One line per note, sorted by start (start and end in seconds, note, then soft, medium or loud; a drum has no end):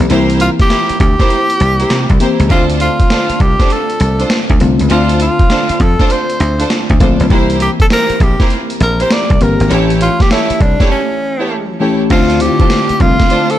0.00 0.10 E3 medium
0.00 0.11 A#3 medium
0.00 0.11 C4 medium
0.00 2.21 G4 medium
0.10 0.48 C2 loud
0.10 1.17 E3 medium
0.10 1.17 A#3 medium
0.10 1.18 C4 medium
0.10 0.38 E4 medium
0.10 1.18 E4 medium
0.10 0.38 G4 medium
0.10 0.38 A#4 medium
0.10 0.39 C5 loud
0.10 closed hi-hat medium
0.30 closed hi-hat medium
0.40 0.50 F4 medium
0.40 closed hi-hat medium
0.60 0.98 G4 loud
0.60 kick medium
0.60 snare medium
0.60 closed hi-hat medium
0.70 0.86 E4 medium
0.70 0.86 G4 medium
0.70 0.87 A#4 medium
0.70 0.87 C5 medium
0.70 snare loud
0.70 closed hi-hat medium
0.89 muted slap bass stroke soft
0.89 closed hi-hat medium
1.00 1.15 D2 medium
1.00 2.17 G4 loud
1.00 kick medium
1.00 closed hi-hat medium
1.19 1.28 E4 medium
1.19 1.28 G4 medium
1.19 1.29 A#4 medium
1.19 1.29 C5 medium
1.19 kick medium
1.19 snare medium
1.19 closed hi-hat medium
1.30 closed hi-hat medium
1.50 closed hi-hat soft
1.60 1.83 C2 medium
1.60 closed hi-hat medium
1.80 1.88 E4 medium
1.80 1.89 G4 medium
1.80 1.89 A#4 medium
1.80 1.89 C5 medium
1.80 closed hi-hat medium
1.90 2.05 C3 loud
1.90 snare loud
1.90 closed hi-hat medium
2.10 2.18 C2 medium
2.10 kick medium
2.10 closed hi-hat soft
2.20 2.47 E3 medium
2.20 2.47 A#3 medium
2.20 2.48 C4 medium
2.20 2.37 E4 medium
2.20 2.37 G4 medium
2.20 2.48 G4 medium
2.20 2.37 A#4 medium
2.20 2.37 C5 medium
2.20 closed hi-hat medium
2.40 2.47 C#2 medium
2.40 closed hi-hat soft
2.50 2.87 D2 loud
2.50 3.57 D3 medium
2.50 3.57 A3 medium
2.50 3.58 C4 medium
2.50 2.78 D4 medium
2.50 2.78 F4 medium
2.50 2.64 F4 medium
2.50 3.58 F4 medium
2.50 2.79 A4 medium
2.50 2.79 C5 loud
2.50 kick loud
2.50 closed hi-hat medium
2.70 closed hi-hat soft
2.80 3.43 F4 medium
2.80 closed hi-hat medium
3.00 kick medium
3.00 closed hi-hat medium
3.10 3.26 D4 medium
3.10 3.26 F4 medium
3.10 3.27 A4 medium
3.10 3.27 C5 medium
3.10 snare loud
3.10 closed hi-hat medium
3.29 muted slap bass stroke soft
3.29 closed hi-hat medium
3.40 3.55 C2 medium
3.40 3.74 G4 medium
3.40 kick loud
3.40 closed hi-hat medium
3.59 3.68 D4 medium
3.59 3.68 F4 medium
3.59 3.68 A4 medium
3.59 3.69 C5 medium
3.59 kick medium
3.59 snare medium
3.59 closed hi-hat medium
3.70 4.31 A4 medium
3.70 closed hi-hat medium
3.90 closed hi-hat soft
4.00 4.23 C2 medium
4.00 closed hi-hat medium
4.19 4.28 D4 medium
4.19 4.28 F4 medium
4.19 4.29 A4 medium
4.19 4.29 C5 medium
4.19 closed hi-hat medium
4.30 snare loud
4.30 closed hi-hat medium
4.50 4.58 D2 medium
4.50 kick medium
4.50 closed hi-hat soft
4.60 4.75 C2 medium
4.60 4.87 D3 medium
4.60 4.88 A3 medium
4.60 4.88 C4 medium
4.60 4.88 F4 medium
4.60 closed hi-hat medium
4.79 4.88 C#2 medium
4.79 closed hi-hat soft
4.90 5.28 D2 loud
4.90 5.97 D3 medium
4.90 5.97 A3 medium
4.90 5.98 C4 medium
4.90 5.18 D4 medium
4.90 5.18 F4 medium
4.90 5.98 F4 medium
4.90 5.19 F4 medium
4.90 5.19 A4 medium
4.90 5.19 C5 loud
4.90 closed hi-hat medium
5.09 closed hi-hat medium
5.20 5.83 F4 medium
5.20 closed hi-hat medium
5.39 kick loud
5.39 closed hi-hat medium
5.50 5.66 D4 medium
5.50 5.67 F4 medium
5.50 5.67 A4 medium
5.50 5.67 C5 medium
5.50 snare loud
5.50 closed hi-hat medium
5.69 muted slap bass stroke soft
5.69 closed hi-hat medium
5.80 5.95 F2 medium
5.80 6.13 A4 medium
5.80 kick medium
5.80 closed hi-hat medium
5.99 6.08 D4 medium
5.99 6.08 F4 medium
5.99 6.09 A4 medium
5.99 6.09 C5 medium
5.99 kick medium
5.99 snare medium
5.99 closed hi-hat medium
6.10 6.71 C5 medium
6.10 closed hi-hat medium
6.30 closed hi-hat medium
6.40 6.63 D2 medium
6.40 closed hi-hat medium
6.60 6.68 D4 medium
6.60 6.68 F4 medium
6.60 6.69 A4 medium
6.60 6.69 C5 medium
6.60 closed hi-hat medium
6.70 snare loud
6.70 closed hi-hat medium
6.90 6.98 D2 medium
6.90 kick medium
6.90 closed hi-hat soft
7.00 7.15 A#1 medium
7.00 7.27 D3 medium
7.00 7.27 A3 medium
7.00 7.27 C4 medium
7.00 7.17 D4 medium
7.00 7.17 F4 medium
7.00 7.28 F4 medium
7.00 7.17 A4 medium
7.00 7.17 C5 medium
7.00 kick medium
7.00 closed hi-hat medium
7.20 7.28 B1 medium
7.20 closed hi-hat soft
7.30 7.68 C2 loud
7.30 8.37 E3 medium
7.30 8.37 A#3 medium
7.30 8.38 C4 medium
7.30 7.58 E4 loud
7.30 7.59 G4 medium
7.30 8.38 G4 medium
7.30 7.59 A#4 medium
7.30 7.59 C5 loud
7.30 kick loud
7.30 closed hi-hat medium
7.50 closed hi-hat soft
7.60 7.70 G4 medium
7.60 closed hi-hat medium
7.80 7.86 A4 loud
7.80 kick loud
7.80 closed hi-hat medium
7.90 8.07 E4 medium
7.90 8.07 G4 medium
7.90 8.07 A#4 medium
7.90 8.24 A#4 loud
7.90 8.07 C5 medium
7.90 snare loud
7.90 closed hi-hat medium
8.10 muted slap bass stroke soft
8.10 closed hi-hat medium
8.20 8.35 A#1 medium
8.20 8.52 G4 medium
8.20 kick medium
8.20 closed hi-hat medium
8.40 8.48 E4 medium
8.40 8.49 G4 medium
8.40 8.49 A#4 medium
8.40 8.49 C5 medium
8.40 kick medium
8.40 snare medium
8.40 closed hi-hat medium
8.50 closed hi-hat medium
8.70 closed hi-hat medium
8.80 9.03 A#1 medium
8.80 9.04 A#4 medium
8.80 closed hi-hat medium
9.00 9.09 E4 medium
9.00 9.09 G4 medium
9.00 9.09 A#4 medium
9.00 9.09 C5 medium
9.00 9.14 C5 medium
9.00 closed hi-hat medium
9.11 9.44 D5 medium
9.11 snare loud
9.11 closed hi-hat medium
9.30 9.38 C2 medium
9.30 kick medium
9.30 closed hi-hat soft
9.40 9.55 G1 medium
9.40 9.67 E3 medium
9.40 9.68 A#3 medium
9.40 9.68 C4 medium
9.40 9.68 G4 medium
9.40 9.71 A#4 medium
9.40 closed hi-hat medium
9.60 9.68 G#1 medium
9.60 closed hi-hat soft
9.70 10.08 A1 loud
9.70 10.77 E3 medium
9.70 10.78 A3 medium
9.70 10.78 C#4 medium
9.70 9.99 E4 medium
9.70 9.99 G4 medium
9.70 10.78 G4 medium
9.70 9.99 A4 medium
9.70 9.99 C#5 loud
9.70 closed hi-hat medium
9.90 closed hi-hat soft
10.01 10.23 F4 medium
10.01 closed hi-hat medium
10.20 10.33 G4 medium
10.20 kick medium
10.20 snare medium
10.20 closed hi-hat soft
10.30 10.47 E4 medium
10.30 10.63 E4 loud
10.30 10.47 G4 medium
10.30 10.47 A4 medium
10.30 10.47 C#5 medium
10.30 snare loud
10.30 closed hi-hat medium
10.50 muted slap bass stroke soft
10.50 closed hi-hat medium
10.60 10.75 C2 medium
10.60 10.91 D4 medium
10.60 kick loud
10.60 closed hi-hat medium
10.80 10.88 E4 medium
10.80 10.89 G4 medium
10.80 10.89 A4 medium
10.80 10.89 C#5 medium
10.80 kick medium
10.80 snare medium
10.80 closed hi-hat medium
10.92 11.77 C#4 medium
11.39 11.48 E4 medium
11.39 11.48 G4 medium
11.39 11.49 A4 medium
11.39 11.49 C#5 medium
11.80 12.07 E3 medium
11.80 12.07 A3 medium
11.80 12.08 C#4 medium
11.80 11.97 E4 medium
11.80 11.97 G4 medium
11.80 12.08 G4 medium
11.80 11.97 A4 medium
11.80 11.97 C#5 medium
12.10 12.47 D2 loud
12.10 12.37 D3 medium
12.10 12.37 A3 medium
12.10 12.38 C4 medium
12.10 12.27 D4 medium
12.10 12.27 F4 medium
12.10 12.38 F4 medium
12.10 12.43 F4 medium
12.10 12.27 A4 medium
12.10 12.27 C5 loud
12.10 kick loud
12.10 closed hi-hat medium
12.10 crash medium
12.30 closed hi-hat soft
12.40 12.94 D3 medium
12.40 12.94 A3 medium
12.40 12.95 C4 medium
12.40 12.49 E4 medium
12.40 13.03 G4 medium
12.40 closed hi-hat medium
12.48 12.98 F4 medium
12.60 12.68 D4 medium
12.60 12.69 F4 medium
12.60 12.69 A4 medium
12.60 12.69 C5 medium
12.60 kick loud
12.60 closed hi-hat medium
12.70 snare loud
12.70 closed hi-hat medium
12.89 muted slap bass stroke soft
12.89 closed hi-hat medium
13.00 13.15 C2 medium
13.00 13.59 D3 medium
13.00 13.59 A3 medium
13.00 13.59 C4 medium
13.00 13.52 F4 loud
13.00 13.59 F4 medium
13.00 kick loud
13.00 closed hi-hat medium
13.20 kick medium
13.20 snare medium
13.20 closed hi-hat medium
13.30 13.46 D4 medium
13.30 13.46 F4 medium
13.30 13.47 A4 medium
13.30 13.47 C5 medium
13.30 closed hi-hat medium
13.50 13.59 A4 medium
13.50 closed hi-hat medium